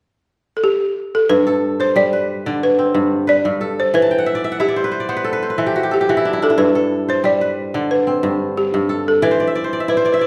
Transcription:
0.57 A4
0.64 G4
1.15 A4
1.29 G2 B4
1.47 A4
1.80 C5
1.96 G3 D5
2.13 B4
2.46 D3 D5
2.63 B4
2.79 C4
2.95 G2
3.27 B4 D5
3.45 G2
3.61 A4
3.80 C5
3.94 E3 B4
4.02 A5
4.11 G5
4.18 F#5
4.26 E5
4.35 D5
4.44 E5
4.52 F#5
4.60 E4 G4 E5
4.68 D5
4.76 C5
4.84 B4
4.92 C5
5.00 D5
5.09 B3 C5
5.17 B4
5.24 A4
5.33 B4
5.43 C5
5.50 B4
5.58 E3 A4
5.66 G4
5.76 F#4
5.83 G4
5.91 G4 A4
6.01 G4
6.09 E3 F#4
6.17 E4
6.25 D4
6.33 E4
6.42 D4 A4
6.50 E4
6.58 G2 B4
6.75 A4
7.09 C5
7.24 G3 D5
7.41 B4
7.74 D3 D5
7.91 B4
8.07 C4
8.23 G2
8.57 G4
8.74 G2
8.89 A4
9.08 A4
9.22 E3 B4 D5
9.31 C5
9.40 D5
9.47 E5
9.55 D5
9.64 C5
9.73 D5
9.80 E5
9.88 E4 B4 D5
9.97 B4 C5
10.05 B4 D5
10.12 B4 E5
10.19 B4 D5

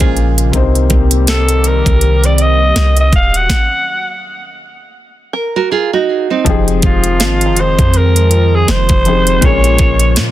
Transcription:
Already playing: A#2 C#3 F3 G#3 A#3 C#4 F4 G#4 C5
0.00 A#1 F4 G#4, kick, closed hi-hat
0.17 closed hi-hat
0.38 closed hi-hat
0.52 C2 C3 D#3 G3 A#3 C4 D#4 G4, kick, closed hi-hat
0.57 C5
0.75 closed hi-hat
0.90 C2, kick, closed hi-hat
1.11 closed hi-hat
1.27 A4, snare, closed hi-hat
1.49 closed hi-hat
1.64 A#4, closed hi-hat
1.86 C2, kick, closed hi-hat
2.01 closed hi-hat
2.24 D5, closed hi-hat
2.35 D5, closed hi-hat
2.42 D#5
2.76 C2, snare, closed hi-hat
2.97 D#5, closed hi-hat
3.13 D#1 F#3 C#4 F#4 F5, kick, closed hi-hat
3.34 F#5, closed hi-hat
3.50 kick, snare
5.33 A#4
5.56 F#4 A#4
5.72 F4 G#4
5.93 D#4 F#4
6.30 C4 D#4
6.44 F1 D#3 F3 G#3 C4 D#4 F4 G4, kick, closed hi-hat
6.50 G#4
6.68 closed hi-hat
6.82 F1 F4, kick, closed hi-hat
7.04 closed hi-hat
7.20 G#1 F5, snare, closed hi-hat
7.41 closed hi-hat
7.46 F1 A#5
7.57 C5, closed hi-hat
7.79 F2, kick, closed hi-hat
7.94 A#4, closed hi-hat
8.16 closed hi-hat
8.31 closed hi-hat
8.55 G#4
8.68 F1 C5 C6, snare, closed hi-hat
8.89 F1, kick, closed hi-hat
9.05 F3 C4 D#4 G4 G#4, closed hi-hat
9.27 closed hi-hat
9.41 A#1 A#2 C#3 A#3 C#4 C#5, kick, closed hi-hat
9.45 G#4 C#5
9.64 closed hi-hat
9.78 A#1, kick, closed hi-hat
9.99 closed hi-hat
10.16 A#2, snare, closed hi-hat

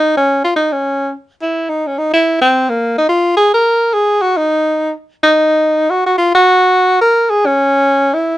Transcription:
Already playing: D#4
0.17 C#4
0.44 F4
0.56 D#4
0.72 C#4
1.42 E4
1.69 D#4
1.87 C#4
1.98 D#4
2.13 E4
2.41 C4
2.69 A#3
2.98 D#4
3.08 F4
3.37 G#4
3.54 A#4
3.93 G#4
4.21 F#4
4.37 D#4
5.23 D#4
5.90 F#4
6.06 F#4
6.18 F4
6.35 F#4
7.01 A#4
7.30 G#4
7.46 C#4
8.14 E4

